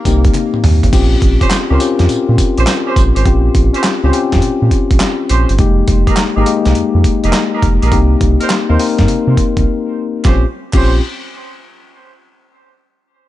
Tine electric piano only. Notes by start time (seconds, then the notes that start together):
Already playing: A#3 C4 D#4 G4
0.06 A#3 C4 D#4 G4
0.93 C4 C#4 F4 G4
1.71 C4 C#4 F4 A#4
1.80 C4 C#4 F4 G4
3.26 C4 C#4 F4 G4
4.03 C4 C#4 F4 G4
4.13 C4 C#4 F4 G4
5.59 G#3 A#3 D#4 G4
6.37 G#3 A#3 D#4 G4
6.46 G#3 A#3 D#4 G4
7.92 A#3 C4 D#4 G4
8.70 A#3 C4 D#4 A#4
8.79 A#3 C4 D#4 A#4
10.25 C4 C#4 F4 G4
10.74 C4 C#4 F4 G4